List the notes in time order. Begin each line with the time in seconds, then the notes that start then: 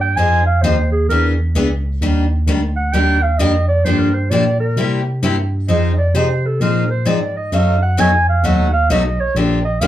Already playing: G2
0.01 G5
0.17 F2 F3 C4 D#4 G#4 G#5
0.46 F5
0.62 D#2 F3 C4 D#4 G#4 C5
0.92 G#4
1.09 E2 E3 B3 D4 G#4 A#4
1.55 C#2 E3 B3 D4 G#4
2.01 D#2 D#3 G3 A#3 D4 G4
2.47 D2 D#3 G3 A#3 D4 G4
2.76 F#5
2.93 D#2 D#3 G3 A#3 D4 G4 G5
3.23 F5
3.38 F2 D#3 G3 A#3 D4 G4 D#5
3.68 D5
3.85 G2 D3 F3 A#3 D4 G4 C5
3.99 A#4
4.14 C5
4.30 A#2 D3 F3 A#3 D4 G4 D5
4.60 A#4
4.76 C3 G3 A#3 E4 G4
5.23 G2 C3 G3 A#3 E4 G4
5.68 F2 F3 C4 D#4 G#4 D#5
5.98 D5
6.14 C3 F3 C4 D#4 G#4 C5
6.46 A4
6.60 A#2 F3 C4 D#4 G#4 A#4
6.90 C5
7.05 G#2 F3 C4 D#4 G#4 D5
7.37 D#5
7.52 F#2 B2 F#3 A3 D#4 F#4 F5
7.82 F#5
7.97 F2 B2 F#3 A3 D#4 F#4 G#5
8.29 F5
8.43 D#2 B2 F#3 A3 D#4 F#4 F#5
8.73 F5
8.89 B1 B2 F#3 A3 D#4 F#4 D#5
9.19 B1 C#5
9.35 A#1 D3 F3 A#3 D4 G4 D5
9.65 D#5
9.81 D2 D3 F3 A#3 D4 G4 F5